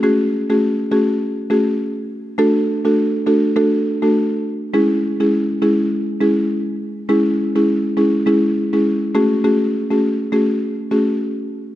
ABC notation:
X:1
M:4/4
L:1/16
Q:"Swing 16ths" 1/4=102
K:C#phr
V:1 name="Marimba"
[A,CFG]3 [A,CFG]3 [A,CFG]2 z2 [A,CFG] z4 z | [A,DFA]3 [A,DFA]3 [A,DFA]2 [A,DFA]3 [A,DFA] z4 | [G,CEG]3 [G,CEG]3 [G,CEG]2 z2 [G,CEG] z4 z | [G,CEG]3 [G,CEG]3 [G,CEG]2 [G,CEG]3 [G,CEG] z2 [A,CFG]2 |
[A,CFG]3 [A,CFG]3 [A,CFG]2 z2 [A,CFG] z4 z |]